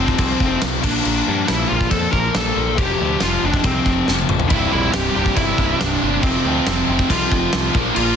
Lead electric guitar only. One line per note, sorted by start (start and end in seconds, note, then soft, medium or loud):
0.00 0.60 C4 medium
0.84 1.51 D4 medium
1.47 1.69 E4 loud
1.69 1.90 F4 loud
1.90 2.12 A4 loud
2.12 2.35 A#4 loud
2.36 2.80 A4 loud
2.78 3.23 G4 loud
3.23 3.44 F4 medium
3.45 3.65 D4 medium
3.66 4.05 C4 medium
4.49 4.70 E4 loud
4.72 4.92 E4 loud
4.93 5.14 G4 loud
5.16 5.36 G4 loud
5.36 5.77 E4 loud
5.80 6.20 D4 loud
6.23 7.05 C4 loud
7.11 7.71 F4 loud
7.95 8.16 F4 loud